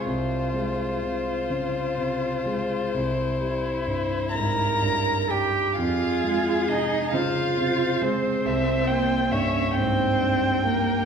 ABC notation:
X:1
M:12/8
L:1/8
Q:3/8=43
K:Fm
V:1 name="Violin"
c8- c b2 g | f2 e f2 c3 d c2 B |]
V:2 name="Violin"
F6 =E6 | A3 c3 =e g e g3 |]
V:3 name="Cello"
z8 z B2 G | F2 E F2 C3 D C2 B, |]
V:4 name="Grand piano" clef=bass
C,, A, C, D, C, A, C,, G, G,, A,, G,, G, | F,, A, C, D, C, A, C,, B, G,, A,, G,, B, |]